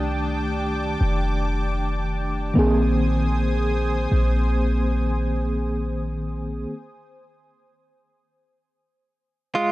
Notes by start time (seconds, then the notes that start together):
Already playing: C2 D#3 A3 D4 G4 G5 A5 D6
1.01 F1
2.54 A#1 D#3 A#3 C4 C5 G#5 D#6
2.59 G#4
4.12 A#1
9.55 G#3 F4